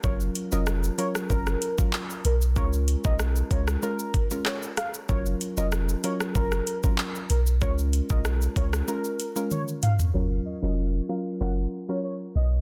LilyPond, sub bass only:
\new Staff \with { instrumentName = "Sub bass" } { \clef bass \time 4/4 \key fis \major \tempo 4 = 95 fis,,8 r16 eis,,8. r8 fis,,8 r4 b,,8 | cis,8. b,,8. cis,8 r2 | fis,,8 r16 eis,,8. r8 fis,,8 r4 b,,8 | cis,8. b,,8. cis,8 r2 |
fis,,8 r16 eis,,8. r8 fis,,8 r4 b,,8 | }